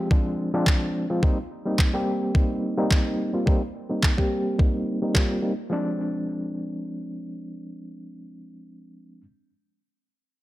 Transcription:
0.10 F3 G#3 C4 D4, kick
0.54 F3 G#3 C4 D4
0.67 kick, clap
1.10 F3 G#3 C4 F4
1.23 G3 A#3 C4 D#4, kick
1.66 G3 A#3 C4 D#4
1.79 kick, clap
1.94 G3 A#3 C4 G4
2.34 G3 A#3 C4 D#4, kick
2.77 G3 A#3 C4 D#4
2.91 kick, clap
3.33 G3 A#3 C4 F4
3.46 G3 A#3 C4 D#4, kick
3.89 G3 A#3 C4 D#4
4.03 kick, clap
4.17 G3 A#3 C4 G4, kick
4.58 G3 A#3 C4 D#4, kick
5.02 G3 A#3 C4 D#4
5.14 G3 A#3 C4 F4, kick, clap
5.42 G3 A#3 C4 D#4
5.70 F3 G#3 C4 D4

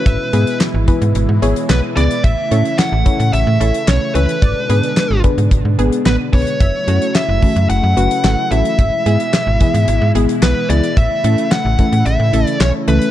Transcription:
Already playing: E4 B4
0.06 G#1 B2 E3 G#3 E5, kick, closed hi-hat
0.33 G#2 B3 E4 G#4 B4, closed hi-hat
0.47 closed hi-hat
0.61 snare, clap, closed hi-hat
0.74 G#1
0.88 E3 B3 E4 G#4 B4, kick, closed hi-hat
1.01 G#2, closed hi-hat
1.15 G#1, closed hi-hat
1.29 G#2
1.42 G#1 B3 E4 G#4 C#5, closed hi-hat
1.56 closed hi-hat
1.69 B1 B3 B4, snare, clap, closed hi-hat
1.97 C#2 E3 B3 E4 G#4 B4 D5, closed hi-hat
2.11 closed hi-hat
2.24 A1 C#3 A3 E5, kick, closed hi-hat
2.51 A2 C#4 E4 A4 C#5, closed hi-hat
2.65 closed hi-hat
2.79 F#5, snare, clap, closed hi-hat
2.92 A1
3.06 E3 C#4 E4 A4 C#5, kick, closed hi-hat
3.20 A2, closed hi-hat
3.33 A1 E5, closed hi-hat
3.47 A2
3.60 A1 C#4 E4 A4 C#5, closed hi-hat
3.74 closed hi-hat
3.88 B1 C#4 C#5, snare, clap, closed hi-hat
4.15 C#2 E3 C#4 E4 A4 B4 C#5, closed hi-hat
4.29 closed hi-hat
4.42 G#1 B2 D3 G#3 D4 D5, kick, closed hi-hat
4.69 G#2 B3 D4 G#4 B4, closed hi-hat
4.83 closed hi-hat
4.97 snare, clap, closed hi-hat
5.11 G#1
5.24 D3 B3 D4 G#4 B4, kick, closed hi-hat
5.38 G#2, closed hi-hat
5.51 G#1, kick, closed hi-hat
5.65 G#2
5.79 G#1 B3 D4 G#4 B4, closed hi-hat
5.92 closed hi-hat
6.06 A1 B3 B4, snare, clap, closed hi-hat
6.33 B1 D3 B3 D4 G#4 B4 C#5, kick, open hi-hat
6.47 closed hi-hat
6.60 F#1 C#3 F#3 A3 E4 E5, kick, closed hi-hat
6.88 F#2 A3 C#4 F#4 A4, closed hi-hat
7.02 closed hi-hat
7.15 E5, snare, clap, closed hi-hat
7.29 F#1
7.42 E3 A3 C#4 F#4 A4, kick, open hi-hat
7.56 F#2, closed hi-hat
7.70 F#1 F#5, closed hi-hat
7.83 F#2
7.97 F#1 A3 C#4 F#4 B4, closed hi-hat
8.11 closed hi-hat
8.24 G#1 A3, snare, clap, closed hi-hat
8.51 A1 E3 A3 C#4 F#4 A4 E5, closed hi-hat
8.65 closed hi-hat
8.79 G#1 B2 E3 G#3 E5, kick, closed hi-hat
9.06 G#2 G#3 B3 E4 G#4, closed hi-hat
9.20 closed hi-hat
9.33 snare, clap, closed hi-hat
9.47 G#1
9.60 E3 G#3 B3 E4 G#4, kick, closed hi-hat
9.74 G#2, closed hi-hat
9.88 G#1, closed hi-hat
10.01 G#2
10.15 G#1 G#3 B3 E4 G#4, closed hi-hat
10.29 closed hi-hat
10.42 B1 B3 B4, snare, clap, closed hi-hat
10.70 C#2 E3 G#3 B3 E4 G#4 D5, closed hi-hat
10.84 closed hi-hat
10.97 A1 C#3 A3 E5, kick, closed hi-hat
11.24 A2 A3 C#4 E4 A4, closed hi-hat
11.38 closed hi-hat
11.52 F#5, snare, clap, closed hi-hat
11.65 A1
11.79 E3 A3 C#4 E4 A4, kick, closed hi-hat
11.92 A2, closed hi-hat
12.06 A1 E5, closed hi-hat
12.20 A2
12.33 A1 A3 C#4 E4 A4, closed hi-hat
12.47 closed hi-hat
12.60 B1 C#4 C#5, snare, clap, closed hi-hat
12.88 C#2 E3 A3 C#4 E4 A4 B4, closed hi-hat
13.02 closed hi-hat

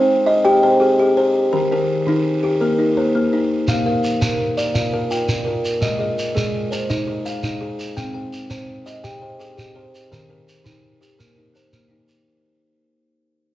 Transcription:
Already playing: C4 C5
0.27 D#5
0.45 G4 G5
0.63 C5
0.80 G4 G#4
0.99 G4
1.17 C5
1.53 D#3 A#4
1.71 D#4 A#4
2.06 D#3 D#4
2.43 G4
2.60 A#3 A#4
2.79 D#4
2.97 A#3 C5
3.15 A#3
3.33 D#4
3.68 A#3 F5, shekere
3.86 A#4 F5
4.04 shekere
4.22 A#3 A#4, shekere
4.57 D5, shekere
4.74 F4 F5, shekere
4.93 A#4
5.11 F4 G5, shekere
5.29 F4, shekere
5.45 A#4
5.65 shekere
5.81 G#3 D#5, shekere
5.99 G#4 D#5
6.19 shekere
6.35 G#3 G#4, shekere
6.71 C5, shekere
6.90 D#4 D#5, shekere
7.07 G#4
7.25 D#4 F5, shekere
7.43 D#4, shekere
7.61 G#4
7.80 shekere
7.97 C4 G5, shekere
8.15 C5 G5
8.33 shekere
8.50 C4 C5, shekere
8.86 D#5, shekere
9.04 G4 G5, shekere
9.22 C5
9.40 G4 G#4, shekere
9.58 G4, shekere
9.75 C5
9.95 shekere
10.11 D#3 A#4, shekere
10.29 D#4 A#4
10.48 shekere
10.64 D#3 D#4, shekere
11.01 G4, shekere
11.19 A#3 A#4, shekere
11.36 D#4
11.54 A#3 C5, shekere
11.73 A#3, shekere
11.88 D#4
12.08 shekere

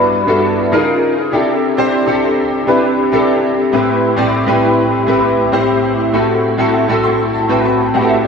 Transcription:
Already playing: G2 B3 D4 E4 F#4 A4 B4
0.27 G2 B3 D4 E4 F#4 A4
0.72 C#3 D#4 F4 G#4 A#4
1.32 C3 D4 E4 G4 A4
1.77 C3 D4 E4 G4 C5
2.06 C3 D4 E4 G4 A4
2.67 C3 D4 E4 G4 B4
3.12 C3 D4 E4 G4 A4
3.72 A2 C4 E4 G4 B4
4.16 A2 C4 E4 G4 D5
4.46 A2 C4 E4 G4 B4
5.07 A2 C4 E4 G4 B4
5.52 A2 C4 E4 G4 C5
6.13 A2 C4 E4 F#4 A4
6.58 A2 C4 E4 F#4 A4
6.88 A2 C4 E4 F#4 A4
7.03 C6
7.33 A5
7.48 A2 C4 E4 F#4 B4 G5
7.65 A5
7.94 A2 C4 E4 F#4 G4 F#5
8.01 A4
8.09 E5
8.24 D5

